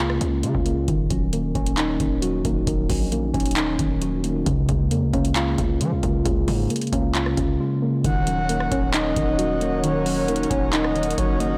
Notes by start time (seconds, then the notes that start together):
Already playing: C#2 C#3 G#3 A#3 C#4
0.00 C#3 F4
0.10 cross-stick
0.21 C#2 C#3, closed hi-hat
0.43 C#3 G#3 F4, closed hi-hat
0.55 C#2, kick
0.66 C#3 A#3, closed hi-hat
0.88 D#1 D#3, kick, closed hi-hat
1.10 D#1 F#3 C#4, kick, closed hi-hat
1.33 D#3 A#3, closed hi-hat
1.55 D#1 C#4, kick, closed hi-hat
1.66 closed hi-hat
1.77 D#3 D#4, clap, closed hi-hat
2.00 D#1 D#3, kick, closed hi-hat
2.22 F#3 F#4, closed hi-hat
2.44 D#1 D#3 A#3, kick, closed hi-hat
2.67 D#1 D#3, kick, closed hi-hat
2.90 A#1 F#3 C#4, kick, open hi-hat
3.12 D#3 A#3, closed hi-hat
3.34 D#1 C#4, kick, closed hi-hat
3.40 closed hi-hat
3.46 closed hi-hat
3.51 closed hi-hat
3.56 D#3 D#4, clap, closed hi-hat
3.79 D#1 D#3, kick, closed hi-hat
4.02 F#3 F#4, closed hi-hat
4.24 D#3 A#3, closed hi-hat
4.46 C#2 C#3, kick, closed hi-hat
4.68 C#2 G#3 A#3, kick, closed hi-hat
4.91 F2 C#3 A#3, closed hi-hat
5.02 C#2
5.13 C#2 A#3 C#4, kick, closed hi-hat
5.25 closed hi-hat
5.35 C#3 F4, clap, closed hi-hat
5.58 C#2 C#3, kick, closed hi-hat
5.80 F3 G#3 F4, closed hi-hat
5.92 C#2
6.03 C#2 C#3 A#3, kick, closed hi-hat
6.25 C#2 C#3, kick, closed hi-hat
6.47 G#2 G#3 A#3, kick, open hi-hat
6.70 C#3 A#3, closed hi-hat
6.76 closed hi-hat
6.81 closed hi-hat
6.87 closed hi-hat
6.93 C#2 A#3 C#4, kick, closed hi-hat
7.15 C#3 F4, clap, closed hi-hat
7.26 cross-stick
7.37 C#2 C#3, kick, closed hi-hat
7.60 G#3 F4
7.82 C#3 A#3
8.04 D#1 D#3 D#4 A#4 C#5 F#5, kick, closed hi-hat
8.27 F#3 C#4, closed hi-hat
8.49 D#3 A#3, closed hi-hat
8.60 cross-stick
8.71 D#1 C#4, kick, closed hi-hat
8.94 D#3 D#4 D#5, clap, closed hi-hat
9.16 D#1 D#3, kick, closed hi-hat
9.38 F#3 F#4, closed hi-hat
9.61 D#3 A#3, closed hi-hat
9.83 D#3 C#5, closed hi-hat
10.06 F#3 C#4, open hi-hat
10.28 D#3 A#3, closed hi-hat
10.36 closed hi-hat
10.43 closed hi-hat
10.50 D#1 C#4, kick, closed hi-hat
10.73 D#3 D#4 D#5, clap, closed hi-hat
10.84 cross-stick
10.96 D#3, closed hi-hat
11.03 closed hi-hat
11.11 closed hi-hat
11.18 F#1 F#3 F#4 C#5, kick, closed hi-hat
11.40 D#3 A#3 D#5, closed hi-hat